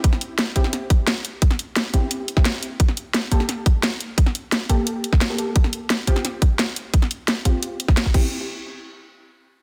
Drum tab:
CC |----------------|----------------|----------------|----------------|
HH |x-x-x-x-x-x-x-x-|x-x-x-x-x-x-x-x-|x-x-x-x-x-x-x-x-|x-x-x-x-x-x-x-x-|
SD |-o--o--oo---o---|-o--o------oo---|-o--o--oo---o---|-o--o------oo---|
BD |o-----o---o-----|o-----o----o----|o-----o---o-----|o-----o----o----|

CC |----------------|--------------x-|----------------|
HH |x-x-x-x-x-x-x-x-|x-x-x-x-x-x-x---|----------------|
SD |-o--o--oo---o---|-o--o------oo---|----------------|
BD |o-----o---o-----|o-----o----o-oo-|----------------|